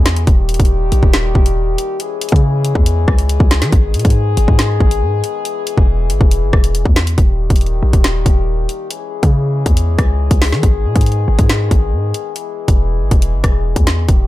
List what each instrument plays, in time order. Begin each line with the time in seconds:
Already playing: 808-style bass E2, french horn section E3 G#3 B3 G#4
0.06 snare, closed hi-hat
0.16 closed hi-hat
0.27 808-style bass D#1, french horn section D#3 G3 A#3 G4, kick, closed hi-hat
0.49 closed hi-hat
0.54 closed hi-hat
0.60 808-style bass D#1, kick, closed hi-hat
0.65 closed hi-hat
0.92 808-style bass A#1, closed hi-hat
1.03 808-style bass D#1, kick
1.14 snare, closed hi-hat
1.35 808-style bass D#1, kick
1.46 closed hi-hat
1.78 closed hi-hat
2.00 french horn section E3 G#3 C#4 G#4, closed hi-hat
2.21 closed hi-hat
2.29 808-style bass C#3, kick, closed hi-hat
2.36 closed hi-hat
2.65 closed hi-hat
2.75 808-style bass E2, kick
2.86 closed hi-hat
3.08 808-style bass C#2, kick, cross-stick
3.19 closed hi-hat
3.29 closed hi-hat
3.40 808-style bass C#2, kick
3.51 snare, closed hi-hat
3.62 808-style bass E3, snare, closed hi-hat
3.72 808-style bass G#1, french horn section D#3 G#3 B3, kick, closed hi-hat
3.94 808-style bass B2, closed hi-hat
3.99 closed hi-hat
4.05 808-style bass G#2, kick, closed hi-hat
4.10 closed hi-hat
4.37 808-style bass G#1, closed hi-hat
4.48 808-style bass G#2, kick
4.59 snare, closed hi-hat
4.80 808-style bass G#1, kick
4.91 closed hi-hat
5.02 808-style bass G#2
5.24 closed hi-hat
5.45 french horn section E3, closed hi-hat
5.67 closed hi-hat
5.78 808-style bass E1, kick
6.10 808-style bass G#1, closed hi-hat
6.21 808-style bass E1, kick
6.31 closed hi-hat
6.42 808-style bass G1
6.53 808-style bass E1, kick, cross-stick
6.64 closed hi-hat
6.75 closed hi-hat
6.85 808-style bass E2, kick
6.96 snare, closed hi-hat
7.07 closed hi-hat
7.18 808-style bass D#1, french horn section D#3 G3 A#3 G4, kick, closed hi-hat
7.50 808-style bass D#1, kick, closed hi-hat
7.56 closed hi-hat
7.61 closed hi-hat
7.66 closed hi-hat
7.83 808-style bass A#1
7.93 808-style bass D#1, kick, closed hi-hat
8.04 snare, closed hi-hat
8.26 808-style bass D#1, kick, closed hi-hat
8.69 closed hi-hat
8.91 french horn section E3 G#3 C#4 G#4, closed hi-hat
9.23 808-style bass C#3, kick, closed hi-hat
9.66 808-style bass E2, kick, closed hi-hat
9.77 closed hi-hat
9.99 808-style bass C#2, kick, cross-stick, closed hi-hat
10.31 808-style bass C#2, kick, closed hi-hat
10.42 snare, open hi-hat
10.52 808-style bass E3, snare
10.63 808-style bass G#1, french horn section D#3 G#3 B3, kick, closed hi-hat
10.85 808-style bass B2
10.96 808-style bass G#2, kick, closed hi-hat
11.01 closed hi-hat
11.06 closed hi-hat
11.12 closed hi-hat
11.28 808-style bass G#1
11.39 808-style bass G#2, kick, closed hi-hat
11.49 snare, closed hi-hat
11.71 808-style bass G#1, kick, closed hi-hat
11.93 808-style bass G#2
12.14 closed hi-hat
12.36 french horn section E3 G#3 B3 G#4, closed hi-hat
12.68 808-style bass E1, kick, closed hi-hat
13.01 808-style bass G#1
13.11 808-style bass E1, kick, closed hi-hat
13.22 closed hi-hat
13.33 808-style bass G1
13.44 808-style bass E1, kick, cross-stick, closed hi-hat
13.76 808-style bass E2, kick, closed hi-hat
13.87 snare, closed hi-hat
14.09 808-style bass D#1, french horn section D#3 G3 A#3 G4, kick, closed hi-hat